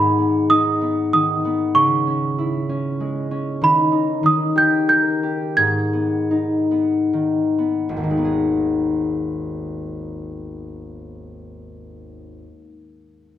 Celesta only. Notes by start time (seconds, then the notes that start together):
Already playing: B5
0.50 D#6
1.13 D#6
1.75 C#6
3.64 B5
4.26 D#6
4.58 G6
4.89 G6
5.57 G#6